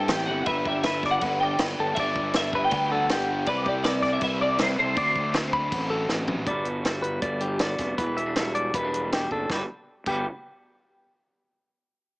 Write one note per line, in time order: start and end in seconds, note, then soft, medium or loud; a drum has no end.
0.00 0.11 G3 medium
0.00 0.11 C4 medium
0.00 0.12 E4 medium
0.00 0.11 A4 medium
0.00 0.26 G5 loud
0.08 0.27 A1 medium
0.08 0.47 C3 medium
0.08 0.30 G3 medium
0.08 0.28 C4 loud
0.08 0.48 G4 medium
0.08 snare loud
0.08 crash medium
0.13 0.27 E4 loud
0.18 snare soft
0.26 0.45 G1 medium
0.26 0.47 C4 medium
0.26 0.50 E4 medium
0.26 0.46 F#5 loud
0.30 0.48 G3 medium
0.46 1.18 G1 loud
0.46 0.85 G2 medium
0.46 0.85 D3 loud
0.46 0.68 G3 loud
0.46 0.67 B3 medium
0.46 0.68 B4 medium
0.46 0.65 E5 loud
0.46 kick loud
0.46 crash medium
0.50 0.66 D4 loud
0.65 0.86 G3 medium
0.65 0.87 B3 medium
0.65 0.87 D4 medium
0.65 0.86 G4 medium
0.65 0.82 E5 medium
0.65 kick medium
0.83 1.59 G2 medium
0.83 1.22 D3 loud
0.83 1.05 G3 medium
0.83 1.05 B3 loud
0.83 1.03 D4 loud
0.83 1.05 B4 medium
0.83 1.10 E5 loud
0.83 snare loud
0.83 crash medium
1.03 1.23 G3 medium
1.03 1.24 B3 medium
1.03 1.24 D4 medium
1.03 1.24 D5 medium
1.03 kick medium
1.03 snare soft
1.11 1.16 F#5 loud
1.18 1.38 F#5 loud
1.18 crash medium
1.22 1.57 G1 medium
1.22 1.58 D3 medium
1.22 1.43 G3 medium
1.22 1.42 B3 medium
1.22 1.40 D4 medium
1.22 1.43 B4 medium
1.22 kick medium
1.40 1.59 G3 medium
1.40 1.60 B3 medium
1.40 1.60 D4 medium
1.40 1.61 D5 medium
1.40 1.95 G5 loud
1.59 1.77 G1 loud
1.59 1.96 G2 loud
1.59 1.96 D3 loud
1.59 1.80 G3 loud
1.59 1.79 B3 loud
1.59 1.78 D4 loud
1.59 1.79 B4 medium
1.59 snare loud
1.59 crash medium
1.69 snare soft
1.78 1.96 G1 loud
1.78 1.98 G3 medium
1.78 1.99 B3 medium
1.78 1.99 D4 medium
1.78 1.98 A4 medium
1.95 2.68 G1 loud
1.95 2.33 G2 medium
1.95 2.34 D3 medium
1.95 2.19 G3 loud
1.95 2.35 E5 loud
1.95 kick loud
1.95 crash medium
1.99 2.18 B3 loud
1.99 2.16 D4 loud
1.99 2.36 D5 loud
2.16 2.36 G3 medium
2.16 2.36 B3 medium
2.16 2.37 D4 medium
2.16 kick medium
2.34 2.72 G2 medium
2.34 2.71 D3 loud
2.34 2.55 G3 loud
2.34 2.54 B3 loud
2.34 2.53 D4 loud
2.34 2.64 E5 loud
2.34 snare loud
2.34 crash medium
2.53 2.73 G3 medium
2.53 2.73 B3 medium
2.53 2.75 D4 medium
2.53 2.92 B4 medium
2.53 kick medium
2.64 2.72 G5 loud
2.71 3.07 D2 medium
2.71 3.09 D3 medium
2.71 2.92 G3 medium
2.71 2.90 B3 medium
2.71 2.90 D4 medium
2.71 2.91 G5 loud
2.71 kick loud
2.71 crash medium
2.90 3.10 G3 medium
2.90 3.10 B3 medium
2.90 3.11 D4 medium
2.90 3.10 A4 medium
2.90 3.47 F#5 loud
3.09 3.45 G1 loud
3.09 3.46 G2 medium
3.09 3.46 D3 loud
3.09 3.30 G3 loud
3.09 3.29 B3 loud
3.09 3.28 D4 loud
3.09 3.49 G4 medium
3.09 snare loud
3.09 crash medium
3.20 snare soft
3.29 3.48 G3 medium
3.29 3.47 B3 medium
3.29 3.49 D4 medium
3.46 4.18 C2 loud
3.46 3.84 C3 loud
3.46 3.68 G3 loud
3.46 3.67 C4 loud
3.46 3.66 E4 loud
3.46 3.67 B4 loud
3.46 3.67 D5 loud
3.46 kick loud
3.46 crash medium
3.66 3.86 G3 medium
3.66 3.86 C4 medium
3.66 3.86 E4 medium
3.66 3.85 G4 medium
3.66 3.73 D5 medium
3.66 kick medium
3.84 4.19 C3 loud
3.84 4.05 G3 loud
3.84 4.04 C4 loud
3.84 4.03 E4 loud
3.84 4.04 B4 medium
3.84 4.13 D5 loud
3.84 snare loud
3.84 crash medium
4.02 4.21 G3 medium
4.02 4.20 C4 medium
4.02 4.21 E4 medium
4.02 4.23 D5 medium
4.02 kick medium
4.02 snare soft
4.13 4.22 E5 medium
4.21 4.57 C2 medium
4.21 4.57 C3 medium
4.21 4.42 G3 medium
4.21 4.40 C4 medium
4.21 4.39 E4 medium
4.21 4.41 B4 medium
4.21 4.42 E5 loud
4.21 kick loud
4.21 crash medium
4.40 4.59 G3 medium
4.40 4.59 C4 medium
4.40 4.60 E4 medium
4.40 4.59 D5 medium
4.58 4.77 C2 loud
4.58 4.94 C3 medium
4.58 4.78 G3 loud
4.58 4.77 C4 loud
4.58 4.76 E4 loud
4.58 4.78 B4 medium
4.58 4.67 C5 medium
4.58 snare loud
4.58 crash medium
4.69 snare soft
4.77 4.96 C2 loud
4.77 4.95 G3 medium
4.77 4.95 C4 medium
4.77 4.95 E4 medium
4.77 4.97 A4 medium
4.77 6.06 C5 medium
4.95 5.68 D2 loud
4.95 5.32 D3 loud
4.95 5.15 A3 loud
4.95 5.14 C4 loud
4.95 5.13 F#4 loud
4.95 5.35 D5 loud
4.95 kick loud
4.95 crash medium
5.14 5.33 A3 medium
5.14 5.34 C4 medium
5.14 5.35 F#4 medium
5.14 kick medium
5.33 5.70 D3 medium
5.33 5.53 A3 medium
5.33 5.52 C4 loud
5.33 5.50 F#4 medium
5.33 snare loud
5.33 crash medium
5.52 5.71 A3 medium
5.52 5.72 C4 medium
5.52 5.73 F#4 medium
5.52 5.91 B5 medium
5.52 kick medium
5.71 6.07 A1 medium
5.71 6.08 D3 medium
5.71 5.92 A3 medium
5.71 5.91 C4 medium
5.71 5.90 F#4 medium
5.71 kick loud
5.71 crash medium
5.90 6.09 A3 medium
5.90 6.10 C4 medium
5.90 6.11 F#4 medium
5.90 6.10 A4 medium
6.09 6.45 A1 loud
6.09 6.46 D3 medium
6.09 6.31 A3 loud
6.09 6.29 C4 loud
6.09 6.28 F#4 loud
6.09 snare medium
6.28 6.47 C4 medium
6.28 6.47 F#4 medium
6.28 floor tom loud
6.32 6.48 A3 medium
6.46 7.19 G1 medium
6.46 7.98 G2 medium
6.46 6.83 G3 medium
6.46 6.64 B3 medium
6.46 6.84 F#4 medium
6.46 9.53 B4 medium
6.46 6.67 D5 medium
6.46 kick loud
6.46 closed hi-hat medium
6.65 7.21 B3 medium
6.65 closed hi-hat medium
6.84 8.35 G3 medium
6.84 7.61 F#4 medium
6.84 snare loud
6.84 closed hi-hat medium
7.02 7.22 B4 medium
7.02 closed hi-hat medium
7.22 7.75 G1 loud
7.22 7.79 B3 medium
7.22 7.42 D5 medium
7.22 kick loud
7.22 closed hi-hat medium
7.40 7.98 D3 medium
7.40 7.60 G4 medium
7.40 closed hi-hat medium
7.59 8.02 F#4 medium
7.59 7.98 D5 medium
7.59 snare loud
7.59 closed hi-hat loud
7.78 7.97 F1 medium
7.78 8.17 B3 medium
7.78 kick medium
7.78 snare soft
7.78 closed hi-hat medium
7.98 8.70 E1 medium
7.98 9.48 E3 medium
7.98 8.17 B4 medium
7.98 kick loud
7.98 closed hi-hat loud
8.17 8.26 B3 medium
8.17 8.54 E5 medium
8.17 closed hi-hat medium
8.26 8.74 D4 soft
8.36 9.50 G3 medium
8.36 9.12 F#4 medium
8.36 snare loud
8.36 closed hi-hat medium
8.55 8.74 D5 medium
8.55 closed hi-hat medium
8.74 9.27 E1 medium
8.74 8.84 B3 medium
8.74 9.12 B4 medium
8.74 kick loud
8.74 closed hi-hat loud
8.84 9.31 D4 medium
8.93 9.48 B2 medium
8.93 closed hi-hat medium
9.12 9.48 F#4 medium
9.12 9.31 G4 medium
9.12 snare loud
9.12 closed hi-hat medium
9.30 9.48 F#1 medium
9.30 9.48 D4 medium
9.30 9.51 A4 medium
9.30 kick medium
9.49 9.60 G1 medium
9.49 9.62 G2 medium
9.49 9.62 G3 medium
9.49 9.62 B3 medium
9.49 9.63 F#4 medium
9.49 9.62 G4 medium
9.49 kick loud
9.49 snare medium
9.54 9.63 B4 medium
10.06 10.24 G1 medium
10.06 10.24 G2 medium
10.06 10.24 G3 medium
10.06 10.24 B3 medium
10.06 10.25 F#4 medium
10.06 10.26 G4 medium
10.06 10.25 B4 medium
10.06 kick loud
10.06 crash medium